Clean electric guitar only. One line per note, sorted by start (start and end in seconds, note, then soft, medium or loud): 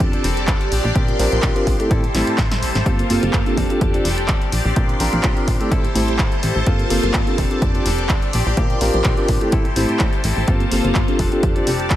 0.00 0.13 G3 medium
0.00 0.13 C4 medium
0.00 0.12 D4 medium
0.00 0.11 A4 loud
0.12 0.23 C4 medium
0.12 0.24 D4 medium
0.12 0.23 A4 medium
0.23 0.46 G3 medium
0.23 0.47 C4 medium
0.23 0.47 D4 medium
0.23 0.48 A4 medium
0.47 0.70 G3 medium
0.47 0.71 C4 medium
0.47 0.71 D4 loud
0.47 0.72 A4 loud
0.71 0.84 F3 medium
0.71 0.84 C4 medium
0.71 0.84 D4 medium
0.71 0.82 G4 medium
0.84 0.94 C4 medium
0.84 0.95 D4 medium
0.84 0.95 G4 medium
0.95 1.17 F3 medium
0.95 1.18 C4 loud
0.95 1.19 D4 medium
0.95 1.20 G4 medium
1.19 1.41 F3 medium
1.19 1.42 C4 medium
1.19 1.43 D4 medium
1.19 1.43 G4 medium
1.42 1.79 F3 medium
1.42 1.80 C4 loud
1.42 1.79 D4 medium
1.42 1.78 G4 loud
1.79 1.89 C4 medium
1.79 1.91 D4 medium
1.79 1.90 G4 medium
1.90 2.03 G3 medium
1.90 2.03 C4 medium
1.90 2.03 E4 medium
1.90 2.01 A4 medium
2.02 2.14 C4 soft
2.02 2.14 E4 medium
2.02 2.14 A4 medium
2.14 2.36 G3 medium
2.14 2.37 C4 medium
2.14 2.38 E4 medium
2.14 2.38 A4 medium
2.38 2.60 G3 medium
2.38 2.62 E4 medium
2.38 2.62 A4 loud
2.61 2.74 G3 medium
2.61 2.75 C4 medium
2.61 2.74 E4 medium
2.61 2.73 A4 medium
2.74 2.85 C4 soft
2.74 2.86 E4 medium
2.74 2.85 A4 medium
2.85 3.08 A#3 medium
2.85 3.09 C4 medium
2.85 3.09 F4 medium
2.85 3.10 A4 loud
3.09 3.32 A#3 medium
3.09 3.32 C4 medium
3.09 3.33 F4 medium
3.09 3.34 A4 medium
3.33 3.56 A#3 medium
3.33 3.56 C4 medium
3.33 3.58 F4 medium
3.33 3.57 A4 loud
3.57 3.94 G3 medium
3.57 3.94 C4 medium
3.57 3.93 D4 medium
3.57 3.92 A4 medium
3.93 4.04 C4 soft
3.93 4.05 D4 medium
3.93 4.05 A4 medium
4.04 4.27 G3 medium
4.04 4.28 C4 medium
4.04 4.28 D4 medium
4.04 4.29 A4 medium
4.28 4.51 G3 medium
4.28 4.51 C4 medium
4.28 4.52 D4 loud
4.28 4.53 A4 loud
4.52 4.65 F3 medium
4.52 4.65 C4 medium
4.52 4.64 D4 medium
4.52 4.63 G4 medium
4.64 4.75 C4 medium
4.64 4.75 D4 medium
4.64 4.76 G4 medium
4.75 4.98 F3 medium
4.75 4.99 C4 medium
4.75 5.00 D4 loud
4.75 5.00 G4 loud
4.99 5.22 F3 medium
4.99 5.22 C4 medium
4.99 5.23 D4 medium
4.99 5.24 G4 medium
5.23 5.60 F3 medium
5.23 5.60 C4 loud
5.23 5.60 D4 loud
5.23 5.58 G4 loud
5.60 5.70 C4 medium
5.60 5.72 D4 medium
5.60 5.71 G4 medium
5.71 5.84 G3 medium
5.71 5.84 C4 medium
5.71 5.84 E4 medium
5.71 5.82 A4 medium
5.83 5.94 C4 medium
5.83 5.95 E4 medium
5.83 5.95 A4 medium
5.95 6.17 G3 medium
5.95 6.18 C4 medium
5.95 6.19 E4 medium
5.95 6.19 A4 medium
6.18 6.41 G3 medium
6.18 6.42 C4 loud
6.18 6.43 E4 medium
6.18 6.44 A4 loud
6.42 6.55 G3 medium
6.42 6.56 C4 medium
6.42 6.55 E4 medium
6.42 6.54 A4 medium
6.55 6.66 C4 medium
6.55 6.67 E4 medium
6.55 6.66 A4 medium
6.66 6.88 A#3 medium
6.66 6.89 C4 medium
6.66 6.90 F4 medium
6.66 6.91 A4 loud
6.90 7.12 A#3 medium
6.90 7.13 C4 medium
6.90 7.14 F4 medium
6.90 7.14 A4 medium
7.14 7.37 A#3 medium
7.14 7.37 C4 loud
7.14 7.38 F4 loud
7.14 7.38 A4 loud
7.37 7.74 G3 medium
7.37 7.75 C4 medium
7.37 7.74 D4 medium
7.37 7.73 A4 loud
7.74 7.85 C4 medium
7.74 7.85 D4 medium
7.74 7.85 A4 medium
7.85 8.08 G3 medium
7.85 8.09 C4 medium
7.85 8.09 D4 medium
7.85 8.10 A4 medium
8.09 8.32 G3 medium
8.09 8.33 C4 loud
8.09 8.33 D4 loud
8.09 8.34 A4 loud
8.33 8.46 F3 medium
8.33 8.46 C4 medium
8.33 8.46 D4 medium
8.33 8.44 G4 medium
8.45 8.56 C4 medium
8.45 8.57 D4 medium
8.45 8.57 G4 medium
8.57 8.79 F3 medium
8.57 8.80 C4 medium
8.57 8.81 D4 medium
8.57 8.82 G4 loud
8.80 9.03 F3 medium
8.80 9.04 C4 medium
8.80 9.05 D4 medium
8.80 9.05 G4 medium
9.04 9.41 F3 medium
9.04 9.42 C4 loud
9.04 9.41 D4 medium
9.04 9.39 G4 loud
9.41 9.52 C4 medium
9.41 9.53 D4 medium
9.41 9.52 G4 medium
9.52 9.65 G3 medium
9.52 9.65 C4 medium
9.52 9.65 E4 medium
9.52 9.63 A4 medium
9.64 9.76 C4 soft
9.64 9.76 E4 medium
9.64 9.76 A4 medium
9.76 9.99 G3 medium
9.76 9.99 C4 medium
9.76 10.00 E4 medium
9.76 10.00 A4 medium
10.00 10.22 G3 medium
10.00 10.23 C4 medium
10.00 10.24 E4 medium
10.00 10.25 A4 loud
10.23 10.36 G3 medium
10.23 10.37 C4 medium
10.23 10.36 E4 medium
10.23 10.35 A4 medium
10.36 10.47 C4 soft
10.36 10.48 E4 medium
10.36 10.48 A4 medium
10.47 10.70 A#3 medium
10.47 10.71 C4 medium
10.47 10.72 F4 medium
10.47 10.72 A4 loud
10.71 10.94 A#3 medium
10.71 10.95 C4 medium
10.71 10.95 F4 medium
10.71 10.96 A4 medium
10.95 11.19 A#3 medium
10.95 11.19 C4 medium
10.95 11.20 F4 medium
10.95 11.20 A4 loud
11.19 11.56 G3 medium
11.19 11.56 C4 medium
11.19 11.55 D4 medium
11.19 11.54 A4 medium
11.55 11.66 C4 medium
11.55 11.67 D4 medium
11.55 11.67 A4 medium
11.67 11.89 G3 medium
11.67 11.90 C4 medium
11.67 11.90 D4 medium
11.67 11.91 A4 medium
11.90 11.96 G3 medium
11.90 11.96 C4 medium
11.90 11.96 D4 medium
11.90 11.96 A4 loud